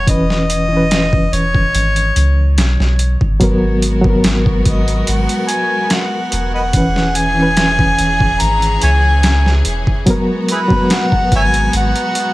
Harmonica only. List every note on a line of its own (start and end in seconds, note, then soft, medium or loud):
0.09 1.36 D#5 loud
1.34 2.58 C#5 medium
4.67 5.11 D#5 medium
5.09 5.52 F#5 loud
5.50 5.94 G#5 loud
5.93 6.54 F#5 medium
6.54 6.61 B4 medium
6.54 6.63 D#5 medium
6.54 7.18 F#5 loud
7.16 8.42 G#5 loud
8.41 8.82 A#5 loud
8.83 8.90 C#5 medium
8.83 8.89 E5 medium
8.83 9.62 G#5 loud
10.52 10.59 E4 medium
10.52 10.59 G#4 medium
10.52 10.95 B4 loud
10.93 11.34 F#5 loud
11.35 11.42 C#5 medium
11.35 11.42 E5 medium
11.35 11.73 G#5 loud
11.77 12.34 F#5 loud